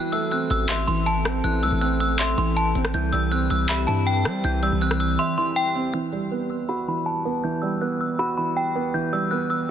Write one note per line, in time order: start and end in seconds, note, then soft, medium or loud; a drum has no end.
0.00 0.86 E3 medium
0.00 2.90 E3 medium
0.00 5.90 C4 medium
0.00 2.91 A4 medium
0.00 0.10 F#6 loud
0.12 1.06 A3 medium
0.12 0.29 E6 medium
0.12 closed hi-hat medium
0.31 1.24 C4 medium
0.31 0.48 F#6 medium
0.31 closed hi-hat medium
0.50 0.86 A1 loud
0.50 0.67 E6 medium
0.50 closed hi-hat medium
0.69 1.63 E5 medium
0.69 0.85 C6 medium
0.69 clap loud
0.69 closed hi-hat medium
0.87 1.42 A1 loud
0.87 1.43 E3 medium
0.87 1.04 C6 medium
0.87 closed hi-hat medium
1.06 1.42 A5 loud
1.06 closed hi-hat medium
1.25 1.80 C4 medium
1.25 cross-stick loud
1.25 closed hi-hat medium
1.44 1.64 A1 loud
1.44 2.36 E3 medium
1.44 1.60 F#6 loud
1.44 closed hi-hat medium
1.63 1.72 C2 loud
1.63 2.56 A3 medium
1.63 1.79 E6 medium
1.63 closed hi-hat medium
1.72 2.35 A1 loud
1.81 2.74 C4 medium
1.81 1.98 F#6 medium
1.81 closed hi-hat medium
2.00 2.17 E6 medium
2.00 closed hi-hat medium
2.19 2.94 E5 medium
2.19 2.36 C6 loud
2.19 clap loud
2.19 closed hi-hat medium
2.38 2.74 A1 loud
2.38 2.92 E3 medium
2.38 2.54 C6 medium
2.38 closed hi-hat medium
2.57 2.73 A5 medium
2.57 closed hi-hat medium
2.75 2.93 A1 loud
2.75 2.94 C4 medium
2.75 closed hi-hat medium
2.85 cross-stick loud
2.94 3.12 C2 loud
2.94 3.86 E3 medium
2.94 5.91 E3 medium
2.94 5.91 G4 medium
2.94 3.11 G6 loud
2.94 closed hi-hat medium
3.12 3.49 C2 loud
3.12 4.06 G3 medium
3.12 3.29 E6 medium
3.12 closed hi-hat medium
3.31 4.24 C4 medium
3.31 3.48 F#6 medium
3.31 closed hi-hat medium
3.50 3.86 C2 loud
3.50 3.67 E6 medium
3.50 closed hi-hat medium
3.69 4.63 E5 medium
3.69 3.86 B5 medium
3.69 clap loud
3.69 closed hi-hat medium
3.87 4.27 G2 loud
3.87 4.43 E3 medium
3.87 4.04 A5 medium
3.87 closed hi-hat medium
4.07 4.42 G5 medium
4.07 closed hi-hat medium
4.25 4.43 G3 medium
4.25 4.80 C4 medium
4.25 cross-stick loud
4.25 closed hi-hat medium
4.44 4.71 C2 loud
4.44 5.36 E3 medium
4.44 4.61 G6 loud
4.44 closed hi-hat medium
4.63 5.56 G3 medium
4.63 4.79 E6 medium
4.63 closed hi-hat medium
4.72 5.17 C2 loud
4.81 5.74 C4 medium
4.81 4.98 F#6 medium
4.81 closed hi-hat medium
4.91 cross-stick medium
5.00 5.16 E6 medium
5.00 closed hi-hat medium
5.19 5.94 E5 medium
5.19 5.35 C6 loud
5.38 5.92 E3 medium
5.38 5.54 C6 medium
5.56 5.73 G5 medium
5.75 5.94 C4 medium
5.94 6.86 E3 medium
5.94 6.10 G6 loud
6.12 7.06 G3 medium
6.12 6.29 E6 medium
6.31 7.24 B3 medium
6.31 6.48 F#6 medium
6.50 6.66 E6 medium
6.69 7.63 F#4 medium
6.69 6.85 B5 medium
6.88 7.42 E3 medium
6.88 7.05 B5 medium
7.06 7.41 A5 medium
7.25 7.80 B3 medium
7.44 8.36 E3 medium
7.44 7.60 G6 medium
7.62 8.56 G3 medium
7.62 7.79 E6 medium
7.81 8.74 B3 medium
7.81 7.98 F#6 medium
8.01 8.17 E6 medium
8.19 9.13 F#4 medium
8.19 8.35 B5 medium
8.37 8.92 E3 medium
8.37 8.54 B5 medium
8.57 8.73 G5 medium
8.75 9.30 B3 medium
8.94 9.71 E3 medium
8.94 9.10 G6 medium
9.13 9.71 G3 medium
9.13 9.29 E6 medium
9.31 9.71 B3 medium
9.31 9.48 F#6 medium
9.50 9.67 E6 medium